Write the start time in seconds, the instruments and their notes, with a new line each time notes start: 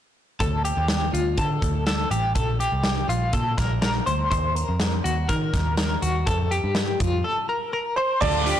0.40 picked electric bass D2, clean electric guitar A4, kick, closed hi-hat
0.65 clean electric guitar G4, closed hi-hat
0.77 picked electric bass D#2
0.88 snare, closed hi-hat
1.13 picked electric bass D2, clean electric guitar F4, closed hi-hat
1.38 picked electric bass D3, clean electric guitar A4, kick, closed hi-hat
1.62 picked electric bass D2, kick, closed hi-hat
1.87 clean electric guitar A4, snare, closed hi-hat
2.11 picked electric bass A1, clean electric guitar G4, closed hi-hat
2.35 picked electric bass A#1, clean electric guitar A4, kick, closed hi-hat
2.60 clean electric guitar G4, closed hi-hat
2.72 picked electric bass C2
2.84 snare, closed hi-hat
3.09 picked electric bass A#1, clean electric guitar F4, closed hi-hat
3.33 picked electric bass A#2, clean electric guitar A4, kick, closed hi-hat
3.58 picked electric bass A#1, clean electric guitar A#4, kick, snare, closed hi-hat
3.82 clean electric guitar A#4, snare, closed hi-hat
4.06 picked electric bass D2, clean electric guitar C5, closed hi-hat
4.31 picked electric bass D#2, clean electric guitar C5, kick, closed hi-hat
4.56 clean electric guitar A#4, closed hi-hat
4.69 picked electric bass F2
4.80 snare, closed hi-hat
5.04 picked electric bass D#2, clean electric guitar F#4, closed hi-hat
5.29 picked electric bass D#3, clean electric guitar A#4, kick, closed hi-hat
5.53 picked electric bass D#2, kick, snare, closed hi-hat
5.77 clean electric guitar A#4, snare, closed hi-hat
6.02 picked electric bass D#2, clean electric guitar F#4, closed hi-hat
6.27 picked electric bass F2, clean electric guitar A4, kick, closed hi-hat
6.51 clean electric guitar G4, closed hi-hat
6.64 picked electric bass G2
6.75 snare, closed hi-hat
7.00 picked electric bass F2, clean electric guitar F4, kick, closed hi-hat
7.24 clean electric guitar A4
7.49 clean electric guitar A#4
7.73 clean electric guitar A#4
7.96 upright piano C5, clean electric guitar C5, glockenspiel C6
8.21 picked electric bass D2, overdriven electric guitar D3 A3 D4 F4, string section D3 F3 A3 F4, clean electric guitar A4, upright piano D5, glockenspiel D6, kick, crash
8.46 overdriven electric guitar A3 D4 F4, clean electric guitar G4, hi-hat pedal, open hi-hat